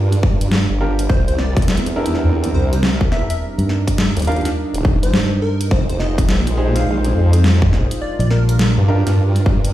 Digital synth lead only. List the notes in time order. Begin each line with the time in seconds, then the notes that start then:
1.09 C5
1.28 C5
1.38 D5
2.54 C5
2.73 C5
3.12 E5
3.30 E5
4.28 F5
5.03 C5
5.42 A#4
5.71 C5
5.89 C5
6.00 D#5
6.76 F5
6.86 F5
8.02 D5
8.20 D5
8.31 A#4
8.49 A#4